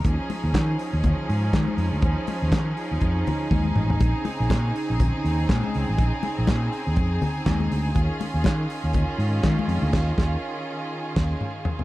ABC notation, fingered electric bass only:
X:1
M:4/4
L:1/16
Q:"Swing 16ths" 1/4=121
K:Ebdor
V:1 name="Fingered electric bass" clef=bass
E,, z2 E,, E,2 z E,,2 z A,,2 E, z F,, =D,, | E,, z2 E,, E,2 z E,, F,,2 z2 E,,2 =A,,,2 | B,,, z2 B,,, B,,2 z B,,,2 z E,,2 B,, z D,, =A,,, | B,,, z2 B,,, B,,2 z E,, F,,2 z2 E,,2 =D,,2 |
E,, z2 E,, E,2 z E,,2 z A,,2 E, z F,, =D,, | E,,2 E,,2 z6 E,,2 z4 |]